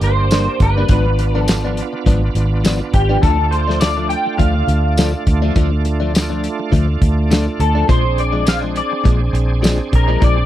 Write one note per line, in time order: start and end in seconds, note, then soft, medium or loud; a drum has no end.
0.00 0.47 G1 medium
0.00 0.85 A#3 medium
0.00 0.85 D4 soft
0.00 0.85 G4 medium
0.00 0.57 C5 loud
0.00 muted clean electric guitar stroke soft
0.00 closed hi-hat medium
0.31 0.47 G2 medium
0.31 0.47 G3 medium
0.31 0.48 A#3 medium
0.31 0.47 D4 medium
0.31 snare loud
0.31 closed hi-hat medium
0.31 tambourine loud
0.48 muted clean electric guitar stroke soft
0.60 0.83 G1 medium
0.60 1.40 B4 medium
0.60 muted clean electric guitar stroke soft
0.60 kick medium
0.60 closed hi-hat medium
0.78 0.91 G3 soft
0.78 0.90 A#3 soft
0.78 0.90 D4 medium
0.89 1.80 G#1 medium
0.89 1.06 G#2 medium
0.89 1.06 F3 medium
0.89 3.18 B3 medium
0.89 1.06 B3 medium
0.89 3.19 D4 medium
0.89 1.06 D4 medium
0.89 3.19 F4 medium
0.89 kick loud
0.89 closed hi-hat medium
1.07 muted clean electric guitar stroke soft
1.19 muted clean electric guitar stroke soft
1.19 closed hi-hat medium
1.35 1.47 F3 medium
1.35 1.48 B3 medium
1.35 1.48 D4 medium
1.40 1.74 A4 medium
1.48 muted clean electric guitar stroke soft
1.48 snare loud
1.48 closed hi-hat medium
1.48 tambourine loud
1.65 1.81 F3 soft
1.65 1.81 B3 soft
1.65 1.80 D4 medium
1.77 closed hi-hat medium
1.93 muted clean electric guitar stroke soft
2.06 2.29 G#1 medium
2.06 2.22 G#2 medium
2.06 2.22 F3 medium
2.06 2.22 B3 medium
2.06 2.22 D4 loud
2.06 kick medium
2.06 closed hi-hat medium
2.23 muted clean electric guitar stroke soft
2.35 2.80 G#1 medium
2.35 muted clean electric guitar stroke soft
2.35 closed hi-hat medium
2.64 2.80 G#2 medium
2.64 2.80 F3 medium
2.64 2.81 B3 medium
2.64 2.80 D4 medium
2.64 snare medium
2.64 closed hi-hat medium
2.64 tambourine loud
2.81 muted clean electric guitar stroke soft
2.94 3.16 G#1 medium
2.94 3.21 G4 medium
2.94 muted clean electric guitar stroke soft
2.94 kick medium
2.94 closed hi-hat medium
3.09 3.22 F3 soft
3.09 3.23 B3 soft
3.09 3.22 D4 medium
3.22 4.14 D2 medium
3.22 3.38 D3 medium
3.22 3.39 F3 medium
3.22 7.85 A3 medium
3.22 3.38 A3 medium
3.22 7.85 D4 medium
3.22 3.38 D4 medium
3.22 7.86 F4 medium
3.22 3.52 A4 medium
3.22 kick loud
3.22 closed hi-hat medium
3.39 muted clean electric guitar stroke soft
3.51 3.80 C5 medium
3.51 muted clean electric guitar stroke soft
3.51 closed hi-hat soft
3.68 3.80 F3 soft
3.68 3.81 A3 medium
3.68 3.81 D4 medium
3.68 snare soft
3.80 4.09 D5 medium
3.80 muted clean electric guitar stroke soft
3.80 snare loud
3.80 closed hi-hat medium
3.80 tambourine loud
3.97 4.14 F3 soft
3.97 4.13 A3 soft
3.97 4.13 D4 medium
4.09 4.38 G5 medium
4.09 closed hi-hat medium
4.26 muted clean electric guitar stroke soft
4.38 4.62 D2 medium
4.38 4.55 D3 medium
4.38 4.55 F3 medium
4.38 4.55 A3 medium
4.38 4.54 D4 medium
4.38 7.26 F5 medium
4.38 kick medium
4.38 closed hi-hat medium
4.55 muted clean electric guitar stroke soft
4.68 5.13 D2 medium
4.68 muted clean electric guitar stroke soft
4.68 closed hi-hat medium
4.97 5.14 D3 medium
4.97 5.13 F3 medium
4.97 5.13 A3 medium
4.97 5.12 D4 medium
4.97 snare loud
4.97 closed hi-hat medium
4.97 tambourine loud
5.13 muted clean electric guitar stroke soft
5.27 5.49 D2 medium
5.27 muted clean electric guitar stroke soft
5.27 kick medium
5.27 closed hi-hat medium
5.42 5.55 F3 soft
5.42 5.55 A3 soft
5.42 5.55 D4 medium
5.56 6.46 D2 medium
5.56 5.72 D3 medium
5.56 5.72 F3 medium
5.56 5.71 A3 medium
5.56 5.71 D4 medium
5.56 kick loud
5.56 closed hi-hat medium
5.72 muted clean electric guitar stroke soft
5.85 muted clean electric guitar stroke soft
5.85 closed hi-hat medium
6.00 6.12 F3 medium
6.00 6.13 A3 medium
6.00 6.13 D4 medium
6.13 muted clean electric guitar stroke soft
6.13 snare loud
6.13 closed hi-hat medium
6.13 tambourine loud
6.30 6.47 F3 soft
6.30 6.47 A3 soft
6.30 6.46 D4 soft
6.44 closed hi-hat medium
6.60 muted clean electric guitar stroke soft
6.72 6.95 D2 medium
6.72 6.88 D3 medium
6.72 6.88 F3 medium
6.72 6.87 A3 medium
6.72 6.87 D4 medium
6.72 kick medium
6.72 closed hi-hat medium
6.88 muted clean electric guitar stroke soft
7.01 7.47 D2 medium
7.01 muted clean electric guitar stroke soft
7.01 kick medium
7.01 closed hi-hat medium
7.31 7.47 D3 medium
7.31 7.47 F3 medium
7.31 7.47 A3 medium
7.31 7.46 D4 medium
7.31 snare loud
7.31 closed hi-hat medium
7.31 tambourine loud
7.47 muted clean electric guitar stroke soft
7.60 7.82 D2 medium
7.60 7.87 A4 medium
7.60 muted clean electric guitar stroke soft
7.60 closed hi-hat medium
7.75 7.88 F3 soft
7.75 7.89 A3 soft
7.75 7.88 D4 medium
7.88 8.80 A#1 medium
7.88 8.04 A#2 medium
7.88 8.04 F3 medium
7.88 8.04 G#3 medium
7.88 10.46 C4 medium
7.88 10.46 D4 medium
7.88 8.03 D4 medium
7.88 10.46 G#4 medium
7.88 8.19 C5 medium
7.88 kick loud
7.88 closed hi-hat medium
8.05 muted clean electric guitar stroke soft
8.18 8.46 D5 medium
8.18 muted clean electric guitar stroke soft
8.18 closed hi-hat medium
8.32 8.44 F3 soft
8.32 8.44 G#3 medium
8.32 8.45 D4 medium
8.45 8.56 F5 loud
8.45 muted clean electric guitar stroke soft
8.45 snare loud
8.45 closed hi-hat medium
8.45 tambourine loud
8.62 8.80 F3 soft
8.62 8.79 G#3 soft
8.62 8.79 D4 medium
8.76 9.04 D5 medium
8.76 closed hi-hat medium
8.92 muted clean electric guitar stroke soft
9.04 9.28 A#1 medium
9.04 9.21 A#2 medium
9.04 9.20 F3 medium
9.04 9.20 G#3 medium
9.04 9.19 D4 medium
9.04 kick medium
9.04 closed hi-hat medium
9.20 muted clean electric guitar stroke soft
9.33 9.79 A#1 medium
9.33 muted clean electric guitar stroke soft
9.33 closed hi-hat medium
9.62 9.79 A#2 medium
9.62 9.79 F3 medium
9.62 9.79 G#3 medium
9.62 9.78 D4 medium
9.62 snare loud
9.62 closed hi-hat medium
9.62 tambourine loud
9.79 muted clean electric guitar stroke soft
9.92 10.16 A#1 medium
9.92 10.21 A#4 medium
9.92 muted clean electric guitar stroke soft
9.92 kick medium
9.92 closed hi-hat medium
10.08 10.21 F3 soft
10.08 10.21 G#3 soft
10.08 10.21 D4 soft
10.21 10.46 A#1 medium
10.21 10.37 A#2 medium
10.21 10.38 F3 medium
10.21 10.37 G#3 medium
10.21 10.37 D4 medium
10.21 10.46 D5 medium
10.21 kick loud
10.21 closed hi-hat medium
10.38 muted clean electric guitar stroke soft